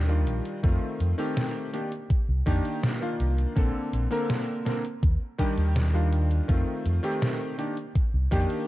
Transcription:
Already playing: fingered electric bass D#2
0.08 electric grand piano D#3 G3 D4 F4
0.27 fingered electric bass A#1, closed hi-hat
0.45 closed hi-hat
0.63 fingered electric bass F2, electric grand piano D#3 A3 C4 F4, kick, closed hi-hat
1.00 fingered electric bass F2, closed hi-hat
1.18 electric grand piano D#3 A3 C4 G4, closed hi-hat
1.37 snare, closed hi-hat
1.73 electric grand piano D#3 A#3 D4 G4, closed hi-hat
1.92 closed hi-hat
2.10 muted fingered electric bass stroke, kick, closed hi-hat
2.29 fingered electric bass C2
2.46 fingered electric bass F2, electric grand piano D#3 A#3 D4 G4, kick, closed hi-hat
2.65 closed hi-hat
2.83 snare, closed hi-hat
3.01 electric grand piano D#3 A#3 D4 F4
3.20 fingered electric bass C2, closed hi-hat
3.38 closed hi-hat
3.55 fingered electric bass A#1, electric grand piano D3 A#3 C4 A4, kick, closed hi-hat
3.93 fingered electric bass A#1, closed hi-hat
4.10 electric grand piano D3 A#3 C4 A#4, closed hi-hat
4.30 snare, closed hi-hat
4.65 electric grand piano D3 A#3 C4 A#4, snare, closed hi-hat
4.85 closed hi-hat
5.03 fingered electric bass D#2, kick, closed hi-hat
5.38 electric grand piano D#3 G3 D4 G4, kick, closed hi-hat
5.58 fingered electric bass D#2, closed hi-hat
5.76 snare, closed hi-hat
5.93 electric grand piano D#3 G3 D4 F4
6.13 closed hi-hat
6.31 closed hi-hat
6.48 fingered electric bass F2, electric grand piano D#3 A3 C4 F4, kick, closed hi-hat
6.85 fingered electric bass F2, closed hi-hat
7.03 electric grand piano D#3 A3 C4 G4, closed hi-hat
7.22 snare, closed hi-hat
7.58 electric grand piano D#3 A#3 D4 G4, closed hi-hat
7.77 closed hi-hat
7.95 muted fingered electric bass stroke, kick, closed hi-hat
8.14 fingered electric bass C2
8.31 fingered electric bass F2, electric grand piano D#3 A#3 D4 G4, kick, closed hi-hat
8.50 closed hi-hat

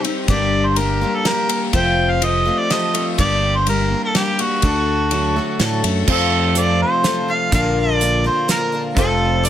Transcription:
Already playing: clean electric guitar G3
0.04 twelve-string acoustic guitar C4 D#4 G4, ride
0.28 fingered electric bass G1, twelve-string acoustic guitar G2 D3 G3 A#3 D4 G4, harmonica D5, kick, ride
0.67 harmonica C5
0.76 twelve-string acoustic guitar G3 A#3 D4, harmonica A#4, ride
0.81 twelve-string acoustic guitar G4
1.01 twelve-string acoustic guitar G3 A#3 D4 G4
1.15 harmonica A4
1.25 twelve-string acoustic guitar G3 A#3 D4 G4, harmonica A#4, snare, ride
1.49 clean electric guitar A#3, ride
1.73 fingered electric bass F1, twelve-string acoustic guitar F3 A3 C4 F4 G4, harmonica G5, kick, ride
2.10 harmonica F5
2.22 clean electric guitar F3, twelve-string acoustic guitar A3 C4 F4 G4, harmonica D#5, ride
2.45 clean electric guitar A3, twelve-string acoustic guitar C4 F4 G4
2.59 harmonica D5
2.70 clean electric guitar F3, twelve-string acoustic guitar A3 C4 F4 G4, harmonica D#5, snare, ride
2.94 clean electric guitar A3, twelve-string acoustic guitar C4 F4 G4, ride
3.18 fingered electric bass G1, twelve-string acoustic guitar G2 D3 G3 A#3 D4 G4, harmonica D5, kick, ride
3.56 harmonica C5
3.67 twelve-string acoustic guitar G3 A#3 D4 G4, harmonica A#4, ride
3.91 clean electric guitar A#3
4.04 harmonica A4
4.15 twelve-string acoustic guitar G3 A#3 D4 G4, harmonica G4, snare, ride
4.39 twelve-string acoustic guitar G3 A#3 D4 G4, harmonica F#4, ride
4.62 fingered electric bass D2, twelve-string acoustic guitar D3 A3 D4 F#4 A4, kick, ride
5.11 clean electric guitar F#3, twelve-string acoustic guitar A3 D4 F#4 A4, ride
5.35 clean electric guitar A3, twelve-string acoustic guitar D4 F#4 A4
5.59 fingered electric bass A2, clean electric guitar F#3, twelve-string acoustic guitar A3 D4 F#4 A4, snare, ride
5.83 fingered electric bass F#2, clean electric guitar A3, twelve-string acoustic guitar F#4 A4, ride
5.87 twelve-string acoustic guitar D4
6.07 clean electric guitar F2 C3 A3, fingered electric bass F2, twelve-string acoustic guitar F3 C4 F4 A4, kick, crash
6.11 harmonica A4
6.55 twelve-string acoustic guitar F3 C4 F4 A4, harmonica D5, closed hi-hat
6.82 harmonica C5
7.04 twelve-string acoustic guitar F3 C4 F4 A4, snare, closed hi-hat
7.28 twelve-string acoustic guitar C4 F4 A4, harmonica F5
7.52 fingered electric bass A#1, twelve-string acoustic guitar A#2 D3 F3 A#3 D4 A#4, clean electric guitar F4, harmonica F5, kick, closed hi-hat
7.79 harmonica D5
8.00 twelve-string acoustic guitar F3 A#3 D4 A#4, closed hi-hat
8.24 twelve-string acoustic guitar F3 A#3 D4 A#4, harmonica C5
8.48 twelve-string acoustic guitar F3 A#3 D4 A#4, harmonica A#4, snare, closed hi-hat
8.72 twelve-string acoustic guitar F3 A#3 D4 A#4
8.95 fingered electric bass F1, clean electric guitar F2 C3 A3, twelve-string acoustic guitar F3 C4 F4 A4, grand piano F4 A4 C5, harmonica A4, kick, closed hi-hat
9.43 twelve-string acoustic guitar F3 C4 F4, harmonica D5, closed hi-hat

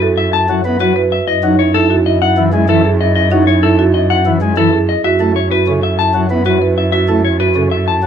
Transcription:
Already playing: cello F#2
0.02 french horn E4, marimba A4
0.17 french horn E4, clean electric guitar E5
0.33 french horn E4, clean electric guitar A5
0.49 pipe organ F#3, french horn E4
0.65 pipe organ B3, french horn E4
0.80 pipe organ F#3, french horn E4, marimba F#4, clean electric guitar B4
0.96 french horn E4, marimba B4
1.12 clean electric guitar E5
1.28 cello F#2, french horn E4, clean electric guitar D#5
1.43 pipe organ F#3, marimba D#4, french horn E4
1.59 french horn E4, clean electric guitar C#5
1.74 marimba E4, french horn E4, clean electric guitar A4
1.90 french horn E4, marimba F#4
2.06 french horn E4, clean electric guitar D#5
2.22 french horn E4, clean electric guitar F#5
2.38 pipe organ E3, french horn E4
2.53 pipe organ G#3, french horn E4
2.69 pipe organ E3, marimba E4, french horn E4, clean electric guitar A4
2.85 french horn E4, marimba G#4
3.01 french horn E4, clean electric guitar D#5
3.16 french horn E4, clean electric guitar D#5
3.31 pipe organ F#3, marimba D#4, french horn E4
3.47 french horn E4, clean electric guitar C#5
3.63 marimba E4, french horn E4, clean electric guitar A4
3.79 french horn E4, marimba F#4
3.94 french horn E4, clean electric guitar D#5
4.10 french horn E4, clean electric guitar F#5
4.26 pipe organ E3, french horn E4
4.42 pipe organ G#3, french horn E4
4.57 pipe organ E3, french horn E4, marimba E4, clean electric guitar A4
4.73 french horn E4, marimba G#4
4.89 clean electric guitar D#5
5.04 cello F#2, french horn E4, marimba F#4, clean electric guitar E5
5.20 pipe organ A3, marimba E4, french horn E4
5.36 french horn E4, clean electric guitar C#5
5.51 french horn E4, marimba F#4, clean electric guitar B4
5.67 pipe organ C#3, french horn E4, marimba A4
5.83 french horn E4, clean electric guitar E5
5.99 french horn E4, clean electric guitar A5
6.14 pipe organ F#3, french horn E4
6.30 pipe organ B3, french horn E4
6.46 pipe organ F#3, french horn E4, marimba F#4, clean electric guitar B4
6.62 french horn E4, marimba B4
6.77 french horn E4, clean electric guitar E5
6.92 french horn E4, marimba F#4, clean electric guitar E5
7.09 pipe organ A3, marimba E4, french horn E4
7.24 french horn E4, clean electric guitar C#5
7.40 french horn E4, marimba F#4, clean electric guitar B4
7.56 pipe organ C#3, french horn E4, marimba A4
7.71 french horn E4, clean electric guitar E5
7.88 french horn E4, clean electric guitar A5
8.03 pipe organ F#3, french horn E4

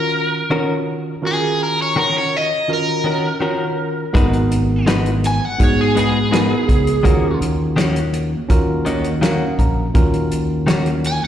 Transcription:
Already playing: tine electric piano D#3 C#4 F4 F#4 A#4, overdriven electric guitar A#4
0.50 tine electric piano D#3 C#4 F4 F#4 A#4, clean electric guitar D#3 C#4 F#4 A#4
1.22 tine electric piano D#3 C#4 F4 F#4 A#4
1.27 overdriven electric guitar G#4
1.63 overdriven electric guitar A#4
1.82 overdriven electric guitar C#5
1.96 clean electric guitar D#3 C#4 F#4 A#4, overdriven electric guitar A#4
2.18 overdriven electric guitar C#5
2.37 overdriven electric guitar D#5
2.68 tine electric piano D#3 C#4 F4 F#4 A#4
2.73 overdriven electric guitar A#4
3.04 clean electric guitar D#3 C#4 F#4 A#4
3.40 clean electric guitar D#3 C#4 F#4 A#4, tine electric piano D#3 C#4 F4 F#4 A#4
4.13 fingered electric bass G#1, clean electric guitar G#3 D#4 F#4 B4, tine electric piano B3 D#4 F#4 A#4, kick, closed hi-hat
4.33 closed hi-hat
4.51 closed hi-hat
4.86 clean electric guitar G#3 D#4 F#4 B4, snare, closed hi-hat
5.06 closed hi-hat
5.24 overdriven electric guitar G#5, closed hi-hat
5.45 overdriven electric guitar F#5
5.58 fingered electric bass G#2, tine electric piano B3 D#4 F#4 G#4, kick, closed hi-hat
5.63 overdriven electric guitar C#5
5.81 overdriven electric guitar G#4
5.95 clean electric guitar G#3 D#4 F#4 B4, overdriven electric guitar G#4, closed hi-hat
6.31 clean electric guitar G#3 D#4 F#4 B4, tine electric piano B3 D#4 F#4 A#4, snare, closed hi-hat
6.69 fingered electric bass C#2, kick, closed hi-hat
6.87 closed hi-hat
7.03 fingered electric bass D#2, clean electric guitar D#3 A#3 C#4 F#4, tine electric piano C#4 F4 F#4 A#4, kick, closed hi-hat
7.41 fingered electric bass D#2, closed hi-hat
7.76 clean electric guitar D#3 A#3 C#4 F#4, snare, closed hi-hat
7.96 closed hi-hat
8.13 closed hi-hat
8.49 fingered electric bass D#2, tine electric piano C#4 F4 F#4 A#4, kick, closed hi-hat
8.85 clean electric guitar D#3 A#3 C#4 F#4, tine electric piano D#5, closed hi-hat
9.04 closed hi-hat
9.21 clean electric guitar D#3 A#3 C#4 F#4, tine electric piano C#4 F#4 A#4 F5 F#5, snare, closed hi-hat
9.59 fingered electric bass A#1, tine electric piano A#5, kick, closed hi-hat
9.94 fingered electric bass D#2, tine electric piano C#4 F4 F#4 A#4, kick, closed hi-hat
10.13 closed hi-hat
10.31 closed hi-hat
10.67 clean electric guitar D#3 A#3 C#4 F#4, snare, closed hi-hat
10.86 closed hi-hat
11.04 overdriven electric guitar G#5, closed hi-hat

